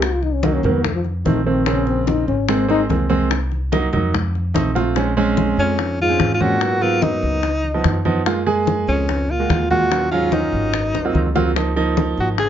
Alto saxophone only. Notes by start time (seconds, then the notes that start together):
5.59 C#4
6.01 F4
6.34 F4
6.42 F#4
6.83 F4
7.03 D#4
8.89 C#4
9.30 F4
9.71 F#4
10.12 F4
10.33 D#4
12.20 F#4
12.39 G#4